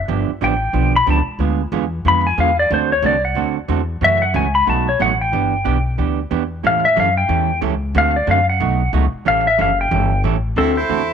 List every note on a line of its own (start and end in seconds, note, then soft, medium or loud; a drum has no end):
0.08 0.28 G1 medium
0.08 0.29 D3 medium
0.08 0.30 F3 medium
0.08 0.30 B3 medium
0.08 0.30 D4 medium
0.08 0.30 G4 medium
0.29 muted upright bass stroke soft
0.41 0.73 A1 medium
0.41 0.53 D3 medium
0.41 0.53 F3 medium
0.41 0.53 B3 medium
0.41 0.53 D4 medium
0.41 0.53 G4 medium
0.41 0.92 G5 medium
0.73 1.06 B1 medium
0.73 0.95 D3 medium
0.73 0.95 F3 medium
0.73 0.95 B3 medium
0.73 0.95 D4 medium
0.73 0.95 G4 medium
0.96 1.08 B5 loud
1.06 1.26 C#2 medium
1.06 1.18 D3 medium
1.06 1.18 F3 medium
1.06 1.18 B3 medium
1.06 1.18 D4 medium
1.06 1.18 G4 medium
1.10 1.22 A5 loud
1.27 muted upright bass stroke soft
1.39 1.71 D2 medium
1.39 1.61 D3 medium
1.39 1.61 G#3 medium
1.39 1.61 B3 medium
1.39 1.61 F4 medium
1.39 1.61 G#4 medium
1.72 2.04 E2 loud
1.72 1.84 D3 medium
1.72 1.84 G#3 medium
1.72 1.84 B3 medium
1.72 1.84 F4 medium
1.72 1.84 G#4 medium
2.05 2.37 F2 medium
2.05 2.26 D3 medium
2.05 2.26 G#3 medium
2.05 2.26 B3 medium
2.05 2.26 F4 medium
2.05 2.27 G#4 medium
2.05 2.27 B5 loud
2.27 2.38 G#5 loud
2.38 2.70 E2 medium
2.38 2.49 D3 medium
2.38 2.49 G#3 medium
2.38 2.49 B3 medium
2.38 2.50 F4 medium
2.38 2.50 G#4 medium
2.38 2.59 F5 loud
2.59 2.71 D5 loud
2.70 3.02 D2 loud
2.70 2.92 D3 medium
2.70 2.92 A3 medium
2.70 2.92 C4 medium
2.70 2.92 F#4 medium
2.70 2.92 A4 medium
2.70 2.92 C5 medium
2.92 3.04 C#5 loud
3.02 3.35 C2 loud
3.02 3.15 D3 medium
3.02 3.15 A3 medium
3.02 3.15 C4 medium
3.02 3.15 F#4 medium
3.02 3.15 A4 medium
3.02 3.25 D5 loud
3.25 3.55 F#5 loud
3.35 3.68 D2 medium
3.35 3.57 D3 medium
3.35 3.57 A3 medium
3.35 3.57 C4 medium
3.35 3.57 F#4 medium
3.35 3.57 A4 medium
3.68 4.00 E2 medium
3.68 3.80 D3 medium
3.68 3.80 A3 medium
3.68 3.80 C4 medium
3.68 3.81 F#4 medium
3.68 3.81 A4 medium
4.01 4.33 F#2 medium
4.01 4.22 C#3 medium
4.01 4.23 E3 medium
4.01 4.23 A3 medium
4.01 4.23 C#4 medium
4.01 4.23 F#4 medium
4.01 4.23 E5 loud
4.22 4.34 F#5 loud
4.34 4.66 C#2 medium
4.34 4.45 C#3 medium
4.34 4.46 E3 medium
4.34 4.46 A3 medium
4.34 4.46 C#4 medium
4.34 4.46 F#4 medium
4.34 4.55 G#5 medium
4.55 4.67 B5 loud
4.66 4.99 B1 medium
4.66 4.88 B2 medium
4.66 4.88 F#3 medium
4.66 4.88 A3 medium
4.66 4.88 D#4 medium
4.66 4.88 F#4 medium
4.66 4.88 A5 medium
4.89 5.00 C#5 medium
4.99 5.32 A1 medium
4.99 5.11 B2 medium
4.99 5.11 F#3 medium
4.99 5.11 A3 medium
4.99 5.12 D#4 medium
4.99 5.12 F#4 medium
4.99 5.21 F#5 loud
5.21 5.95 G5 loud
5.32 5.65 G1 medium
5.32 5.53 E3 medium
5.32 5.54 B3 medium
5.32 5.54 D4 medium
5.32 5.54 G4 medium
5.64 5.97 B1 medium
5.64 5.76 E3 medium
5.64 5.77 B3 medium
5.64 5.77 D4 medium
5.64 5.77 G4 medium
5.98 6.30 D2 medium
5.98 6.19 E3 medium
5.98 6.19 B3 medium
5.98 6.19 D4 medium
5.98 6.19 G4 medium
6.31 6.63 E2 medium
6.31 6.42 E3 medium
6.31 6.42 B3 medium
6.31 6.42 D4 medium
6.31 6.43 G4 medium
6.63 6.96 A2 medium
6.63 6.84 E3 medium
6.63 6.85 G3 medium
6.63 6.85 C#4 medium
6.63 6.85 E4 medium
6.63 6.85 A4 medium
6.63 6.85 F5 medium
6.85 6.97 E5 loud
6.96 7.29 F#2 loud
6.96 7.07 E3 medium
6.96 7.08 G3 medium
6.96 7.08 C#4 medium
6.96 7.08 E4 medium
6.96 7.08 A4 medium
6.96 7.17 F5 medium
7.17 7.59 G5 loud
7.29 7.61 E2 loud
7.29 7.50 E3 medium
7.29 7.50 G3 medium
7.29 7.50 C#4 medium
7.29 7.50 E4 medium
7.29 7.50 A4 medium
7.61 7.94 C#2 loud
7.61 7.73 E3 medium
7.61 7.73 G3 medium
7.61 7.73 C#4 medium
7.61 7.73 E4 medium
7.61 7.73 A4 medium
7.95 8.27 D2 loud
7.95 8.16 D3 medium
7.95 8.16 A3 medium
7.95 8.16 C4 medium
7.95 8.16 F#4 medium
7.95 8.16 A4 medium
7.95 8.16 F5 medium
8.16 8.28 D5 medium
8.27 8.59 F#2 loud
8.27 8.39 D3 medium
8.27 8.39 A3 medium
8.27 8.39 C4 medium
8.27 8.39 F#4 medium
8.27 8.39 A4 medium
8.27 8.49 F5 medium
8.49 8.91 F#5 loud
8.60 8.92 B1 loud
8.60 8.81 B2 medium
8.60 8.81 F#3 medium
8.60 8.81 A3 medium
8.60 8.81 D#4 medium
8.60 8.82 F#4 medium
8.93 9.12 C#2 loud
8.93 9.04 B2 medium
8.93 9.04 F#3 medium
8.93 9.05 A3 medium
8.93 9.05 D#4 medium
8.93 9.05 F#4 medium
9.13 muted upright bass stroke soft
9.25 9.58 A1 medium
9.25 9.46 E3 medium
9.25 9.47 G3 medium
9.25 9.47 C#4 medium
9.25 9.47 E4 medium
9.25 9.47 A4 medium
9.25 9.47 F5 loud
9.47 9.59 E5 loud
9.58 9.90 F#1 loud
9.58 9.70 E3 medium
9.58 9.70 G3 medium
9.58 9.70 C#4 medium
9.58 9.70 E4 medium
9.58 9.70 A4 medium
9.58 9.80 F5 medium
9.81 10.22 G5 loud
9.91 10.23 G1 loud
9.91 10.12 E3 medium
9.91 10.12 G3 medium
9.91 10.12 C#4 medium
9.91 10.12 E4 medium
9.91 10.12 A4 medium
10.24 10.56 A1 medium
10.24 10.35 E3 medium
10.24 10.35 G3 medium
10.24 10.36 C#4 medium
10.24 10.36 E4 medium
10.24 10.36 A4 medium
10.56 10.88 D2 medium
10.56 10.77 D3 medium
10.56 10.78 A3 medium
10.56 10.78 C4 medium
10.56 10.76 C4 medium
10.56 10.78 E4 medium
10.56 10.78 F#4 medium
10.56 10.78 A4 medium
10.77 11.13 E4 medium
10.77 11.13 A4 medium
10.77 11.13 C5 medium
10.89 11.13 E2 medium
10.89 11.01 D3 medium
10.89 11.01 A3 medium
10.89 11.01 C4 medium
10.89 11.01 F#4 medium
10.89 11.01 A4 medium